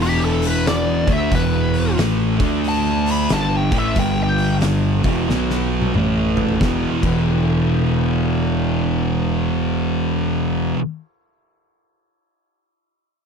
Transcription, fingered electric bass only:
0.00 1.03 E1 medium
1.07 1.30 D2 medium
1.31 1.94 E1 medium
1.98 2.37 A1 loud
2.40 3.26 D2 loud
3.31 3.70 G1 medium
3.72 3.95 A1 loud
3.96 5.01 G1 medium
5.04 5.27 E1 medium
5.29 5.91 B1 medium
5.96 6.58 A1 medium
6.61 6.85 E1 medium
7.03 10.72 E1 medium

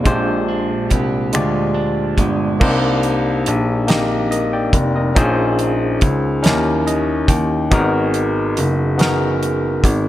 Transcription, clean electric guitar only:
0.00 1.33 A#3 medium
0.00 0.14 D#4 medium
0.00 0.90 G4 medium
0.04 2.60 A#2 medium
0.48 1.73 D4 medium
0.90 3.19 G4 medium
1.33 2.17 G#3 soft
1.74 2.69 D4 medium
2.18 2.69 G#3 medium

